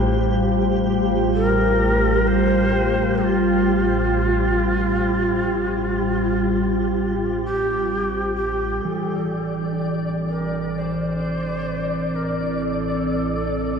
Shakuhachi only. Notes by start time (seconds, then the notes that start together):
1.34 A#4
2.27 C5
3.23 F4
7.45 G4
8.35 G4
8.81 A4
10.28 A#4
10.75 C5
12.15 A#4
12.61 A4